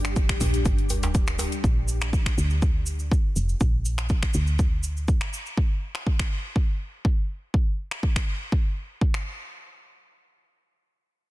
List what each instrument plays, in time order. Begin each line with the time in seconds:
Already playing: fm bass G1, ambient pad G3 D4 G4
0.05 finger snap, closed hi-hat, cabasa
0.16 kick, closed hi-hat, cabasa
0.29 finger snap, kick
0.40 fm bass A#1, open hi-hat, djembe slap, djembe tone, cabasa
0.54 closed hi-hat, cabasa
0.65 fm bass G1, kick, closed hi-hat, cabasa
0.78 closed hi-hat
0.89 open hi-hat, djembe tone, cabasa
1.03 fm bass D1, closed hi-hat, djembe slap, djembe tone, cabasa
1.14 kick, closed hi-hat, cabasa
1.27 finger snap, closed hi-hat, djembe tone, cabasa
1.39 open hi-hat, djembe slap, djembe tone, cabasa
1.52 closed hi-hat, cabasa
1.64 fm bass A#1, kick, cabasa
1.88 cabasa
2.01 finger snap, cabasa
2.13 kick, cabasa
2.26 finger snap, kick
2.38 fm bass D2, cabasa
2.50 cabasa
2.62 kick, cabasa
2.86 cabasa
2.99 cabasa
3.12 kick, cabasa
3.36 fm bass F1, cabasa
3.49 cabasa
3.60 fm bass A#1, kick, cabasa
3.85 cabasa
3.98 finger snap, cabasa
4.09 kick, cabasa
4.23 finger snap, kick
4.34 fm bass D2, cabasa
4.47 cabasa
4.59 kick, cabasa
4.83 cabasa
4.97 cabasa
5.08 kick, cabasa
5.21 finger snap
5.33 cabasa
5.46 cabasa
5.57 kick
5.95 finger snap
6.07 kick
6.19 finger snap, kick
6.56 kick
7.05 kick
7.54 kick
7.91 finger snap
8.03 kick
8.16 finger snap, kick
8.52 kick
9.01 kick
9.14 finger snap